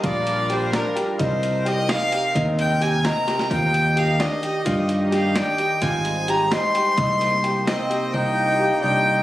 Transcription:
<<
  \new Staff \with { instrumentName = "Violin" } { \time 5/8 \key c \minor \tempo 4 = 130 d''4 c''8 bes'8 r8 | c''4 ees''8 f''4 | r8 g''8 aes''8 bes''4 | g''4 f''8 ees''4~ |
ees''8 r8 f''8 g''4 | aes''4 bes''8 c'''4~ | c'''4. ees''4 | g''4. g''4 | }
  \new Staff \with { instrumentName = "Grand piano" } { \time 5/8 \key c \minor f'4 g'8 d'8 g'8 | ees'4 g'8 ees'8 g'8 | ees'4 g'8 ees'8 g'8 | f'4 g'8 d'8 g'8 |
f'4 g'8 d'8 g'8 | f'4 g'8 ees'8 g'8 | ees'4 g'8 ees'8 g'8 | ees'4 g'8 d'8 ees'8 | }
  \new Staff \with { instrumentName = "Analog synth pad" } { \time 5/8 \key c \minor <g d' f' bes'>2~ <g d' f' bes'>8 | <c c' ees' bes'>2~ <c c' ees' bes'>8~ | <c c' ees' bes'>2~ <c c' ees' bes'>8 | <ees ees' g' ees''>2~ <ees ees' g' ees''>8~ |
<ees ees' g' ees''>2~ <ees ees' g' ees''>8 | <g aes ees' c''>2~ <g aes ees' c''>8 | <c bes ees' c''>2~ <c bes ees' c''>8 | <c bes f' g'>2~ <c bes f' g'>8 | }
  \new Staff \with { instrumentName = "Flugelhorn" } { \time 5/8 \key c \minor r2 r8 | r2 r8 | r2 r8 | r2 r8 |
r2 r8 | r2 r8 | r4. c'4 | ees'4. ees'4 | }
  \new Staff \with { instrumentName = "Fingered electric bass" } { \clef bass \time 5/8 \key c \minor bes,,2 r8 | c,2 r8 | ees,2 r8 | ees,2 r8 |
g,2 r8 | aes,,2 r8 | c,2 r8 | c,4. c,4 | }
  \new DrumStaff \with { instrumentName = "Drums" } \drummode { \time 5/8 <hh bd>8 hh8 hh8 <hh sn>8 hh8 | <hh bd>8 hh8 hh8 <hh sn>8 hh8 | <hh bd>8 hh8 hh8 <hh sn>8 <hh sn>16 sn16 | <hh bd>8 hh8 hh8 <hh sn>8 hh8 |
<hh bd>8 hh8 <hh sn>8 <hh sn>8 hh8 | <hh bd>8 hh8 hh8 <hh sn>8 hh8 | <hh bd>8 <hh sn>8 hh8 <hh sn>8 hh8 | r4. r4 | }
>>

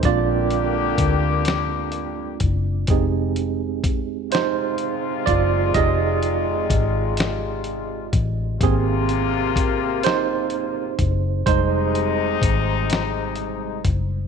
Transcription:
<<
  \new Staff \with { instrumentName = "Tine electric piano" } { \time 6/8 \key f \dorian \tempo 4. = 42 << { <f' d''>4 r2 | <c' aes'>4. <ees' c''>4 <f' d''>8 | <aes' ees''>4 r2 | aes'4. <ees' c''>4. |
<ees' c''>2 r4 | } \\ { <aes c' d'>4. r4. | <aes ees' g'>2. | <aes ees' g'>8 r2 r8 | <bes c' g'>8 r2 r8 |
<g aes>8 r2 r8 | } >> }
  \new Staff \with { instrumentName = "Horn section" } { \time 6/8 \key f \dorian <d bes g'>2~ <d bes g'>8 r8 | r4. <c aes f'>4.~ | <c aes f'>2~ <c aes f'>8 r8 | <c bes f'>2~ <c bes f'>8 r8 |
<c aes ees'>2~ <c aes ees'>8 r8 | }
  \new Staff \with { instrumentName = "Fingered electric bass" } { \clef bass \time 6/8 \key f \dorian bes,,4 d,4. ges,,8 | f,,2~ f,,8 ges,,8 | f,,4 aes,,4. a,,8 | aes,,2~ aes,,8 ges,,8 |
f,,4 aes,,4. ges,,8 | }
  \new DrumStaff \with { instrumentName = "Drums" } \drummode { \time 6/8 <hh bd>8 hh8 <hh bd>8 <hh sn>8 hh8 <hh bd>8 | <hh bd>8 hh8 <hh bd>8 <hh sn>8 hh8 <hh bd>8 | <hh bd>8 hh8 <hh bd>8 <hh sn>8 hh8 <hh bd>8 | <hh bd>8 hh8 <hh bd>8 <hh sn>8 hh8 <hh bd>8 |
<hh bd>8 hh8 <hh bd>8 <hh sn>8 hh8 <hh bd>8 | }
>>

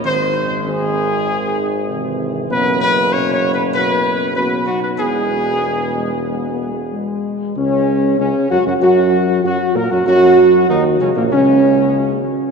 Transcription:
<<
  \new Staff \with { instrumentName = "Trumpet section" } { \time 4/4 \key e \lydian \tempo 4 = 96 bis'4 gis'2~ gis'8 r8 | b'8 b'8 \tuplet 3/2 { cis''8 cis''8 b'8 } b'4 b'8 fis'16 b'16 | gis'2. r4 | cis'4 cis'8 fis'16 fis'16 fis'4 fis'8 ais'16 fis'16 |
fis'4 dis'8 cis'16 ais16 cis'4. r8 | }
  \new Staff \with { instrumentName = "French horn section" } { \time 4/4 \key e \lydian << { bis4 bis2. | cis'4 cis'4 cis'4 cis'8 dis'8 | e'4 gis8 gis8 \tuplet 3/2 { b8 b8 gis8 } gis4 | cis'4 cis'8 fis'16 fis'16 fis'4 fis'8 ais'16 fis'16 |
fis'4 dis'8 cis'16 ais16 cis'4. r8 | } \\ { bis4 bis2. | b4 b4 b4 b4 | b4 r2. | r1 |
r1 | } >> }
  \new Staff \with { instrumentName = "Trombone section" } { \clef bass \time 4/4 \key e \lydian dis4 dis2 <bis, e>4 | <b, fis>4 <b, fis>4 <b, fis>4 <b, fis>4 | <b, gis>2.~ <b, gis>8 r8 | cis4 cis8 fis16 fis16 fis4 fis8 ais16 fis16 |
fis4 dis8 cis16 ais,16 cis4. r8 | }
  \new Staff \with { instrumentName = "Tuba" } { \clef bass \time 4/4 \key e \lydian gis,,1 | fis,,2.~ fis,,8 r8 | e,,2.~ e,,8 r8 | cis,4 cis,8 fis,16 fis,16 fis,4 fis,8 ais,16 fis,16 |
fis,4 dis,8 cis,16 ais,,16 cis,4. r8 | }
>>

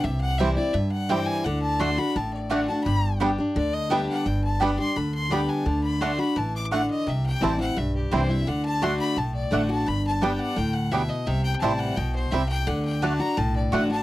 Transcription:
<<
  \new Staff \with { instrumentName = "Fiddle" } { \time 4/4 \key g \major \tempo 4 = 171 e''8 fis''8 e''8 d''8 e''8 fis''8 g''8 aes''8 | fis''8 a''8 c'''8 b''8 a''8 d''8 fis''8 a''8 | b''4 r4 d''8 ees''8 e''8 fis''8 | g''8 a''8 b''8 c'''8 b''8 c'''8 b''8 aes''8 |
a''8 b''8 c'''8 b''8 a''8 d'''8 fis''8 ees''8 | e''8 g''8 a''8 fis''8 e''8 g'8 c''8 e''8 | fis''8 a''8 c'''8 b''8 a''8 d''8 fis''8 a''8 | b''8 a''8 g''8 fis''8 g''8 fis''8 e''8 ees''8 |
e''8 g''8 a''8 fis''8 g''8 c''8 e''8 g''8 | fis''8 g''8 a''8 bes''8 a''8 d''8 fis''8 a''8 | }
  \new Staff \with { instrumentName = "Mandolin" } { \time 4/4 \key g \major r4 <c' e' c'' g''>16 r4. r16 <c' e' c'' g''>16 r8. | r4 <a fis' d'' fis''>16 r4. r16 <a fis' d'' fis''>16 r8. | r4 <b g' d'' g''>16 r4. r16 <b g' d'' g''>16 r8. | r4 <b g' d'' g''>16 r4. r16 <b g' d'' g''>16 r8. |
r4 <a fis' d'' fis''>16 r4. r16 <a fis' d'' fis''>16 r8. | r4 <c' e' c'' g''>16 r4. r16 <c' e' c'' g''>16 r8. | r4 <a fis' d'' fis''>16 r4. r16 <a fis' d'' fis''>16 r8. | r4 <b g' d'' g''>16 r4. r16 <b g' d'' g''>16 r8. |
r4 <c' e' c'' g''>16 r4. r16 <c' e' c'' g''>16 r8. | r4 <a fis' d'' fis''>16 r4. r16 <a fis' d'' fis''>16 r8. | }
  \new Staff \with { instrumentName = "Five-string banjo" } { \time 4/4 \key g \major r4 <g c' e'>8 r4. <g c' e'>8 r8 | r4 <a d'>8 r4. <a d'>8 r8 | r4 <g b d'>8 r4. <g b d'>8 r8 | r4 <g b d'>8 r4. <g b d'>8 r8 |
r4 <a d'>8 r4. <a d'>8 r8 | r4 <g c' e'>8 r4. <g c' e'>8 r8 | r4 <a d'>8 r4. <a d'>8 r8 | r4 <g b d'>8 r4. <g b d'>8 r8 |
r4 <g c' e'>8 r4. <g c' e'>8 r8 | r4 <a d'>8 r4. <a d'>8 r8 | }
  \new Staff \with { instrumentName = "Steel-string acoustic guitar" } { \time 4/4 \key g \major << { r4 <e g c' e'>8 <c' e'>8 r4 <e g c' e'>4 | r4 <d a d' fis'>8 <d' fis'>8 r4 <d a d' fis'>8 <d' fis'>8 | r4 <g b d' g'>8 <d' g'>8 r4 <g b d' g'>4 | r4 <g b d' g'>8 <d' g'>8 r4 <g b d' g'>4 |
r4 <d a d' fis'>8 <d' fis'>8 r2 | r4 <e g c' e'>8 <c' e'>8 r4 <e g c' e'>8 <c' e'>8 | r4 <d a d' fis'>4 r4 <d a d' fis'>8 <d' fis'>8 | r4 <g b d' g'>4 r2 |
r4 <e g c' e'>4 r2 | r4 <d a d' fis'>8 <d' fis'>8 r4 <d a d' fis'>8 <d' fis'>8 | } \\ { c2 g,2 | d2 a,2 | g,2 d2 | g,2 d2 |
d2 e4 d4 | c2 g,2 | d2 a,2 | g,2 a,4 b,4 |
c2 b,4 c4 | d2 a,2 | } >> }
  \new Staff \with { instrumentName = "Upright bass" } { \clef bass \time 4/4 \key g \major c,2 g,2 | d,2 a,,2 | g,,2 d,2 | g,,2 d,2 |
d,2 a,,2 | c,4 a,,4 b,,4 c,4 | d,2 b,,4 a,,4 | g,,2 d,2 |
c,4 a,,4 b,,4 c,4 | d,2 b,,4 a,,4 | }
>>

